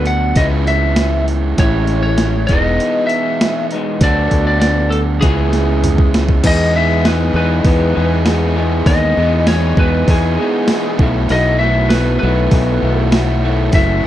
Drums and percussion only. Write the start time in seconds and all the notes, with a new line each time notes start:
0.06 open hi-hat
0.36 kick, open hi-hat
0.67 snare, open hi-hat
0.96 snare, open hi-hat
1.28 open hi-hat
1.58 kick, open hi-hat
1.87 open hi-hat
2.18 snare, open hi-hat
2.49 kick, open hi-hat
2.80 open hi-hat
3.09 open hi-hat
3.41 snare, open hi-hat
3.71 open hi-hat
4.01 kick, open hi-hat
4.31 kick, open hi-hat
4.62 snare, open hi-hat
4.92 open hi-hat
5.22 kick, snare, open hi-hat
5.53 snare, open hi-hat
5.84 mid tom, open hi-hat
5.98 kick
6.14 snare, open hi-hat
6.29 kick
6.44 kick, open hi-hat, crash
7.05 snare, open hi-hat
7.65 kick, open hi-hat
8.26 snare, open hi-hat
8.86 kick, open hi-hat
9.17 snare
9.47 snare, open hi-hat
9.77 kick
10.08 kick, open hi-hat
10.68 snare, open hi-hat
10.99 kick
11.29 open hi-hat
11.61 snare
11.90 snare, open hi-hat
12.51 kick, open hi-hat
13.12 snare, open hi-hat
13.72 kick, open hi-hat
14.04 snare